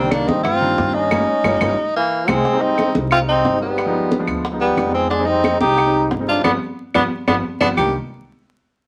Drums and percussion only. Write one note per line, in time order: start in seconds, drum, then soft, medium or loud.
0.11 high bongo medium
0.11 high conga medium
0.11 claves medium
0.28 high conga medium
0.45 high bongo medium
0.45 high conga soft
0.45 low conga medium
0.45 claves medium
0.62 high conga soft
0.78 high bongo medium
0.78 low bongo medium
0.78 high conga medium
0.95 high conga soft
1.11 high bongo medium
1.11 low conga loud
1.11 claves medium
1.44 high bongo medium
1.44 low conga loud
1.44 claves medium
1.61 high bongo medium
1.61 low conga medium
1.61 claves loud
2.28 high bongo loud
2.28 low conga loud
2.28 claves loud
2.45 high bongo medium
2.45 high conga soft
2.62 high conga soft
2.78 high bongo medium
2.78 high conga medium
2.78 claves medium
2.95 high conga medium
3.11 high bongo medium
3.11 high conga soft
3.11 claves medium
3.28 high conga soft
3.45 high bongo medium
3.45 low bongo medium
3.45 high conga medium
3.62 high conga soft
3.78 high bongo medium
3.78 high conga soft
3.78 claves medium
3.95 high conga soft
4.11 high bongo medium
4.11 high conga medium
4.28 high bongo soft
4.28 high conga soft
4.28 claves medium
4.45 high bongo medium
4.45 high conga soft
4.61 high bongo soft
4.61 high conga soft
4.78 high bongo medium
4.78 low bongo medium
4.78 high conga medium
4.78 claves medium
4.94 high bongo soft
4.94 high conga soft
5.11 high bongo medium
5.11 high conga soft
5.27 high conga soft
5.44 high bongo medium
5.44 high conga medium
5.44 claves medium
5.61 high conga loud
5.78 high bongo medium
5.78 high conga soft
5.78 claves medium
5.95 high conga soft
6.11 high bongo medium
6.11 low bongo medium
6.11 high conga medium
6.28 high conga soft
6.45 low bongo medium
6.45 high conga loud
6.45 claves medium
6.94 low bongo medium
6.94 high conga medium
6.94 claves medium
7.28 low bongo medium
7.28 high conga medium
7.28 claves medium
7.61 low bongo medium
7.61 high conga medium
7.61 claves medium
7.78 low bongo medium
7.78 low conga medium
7.78 claves medium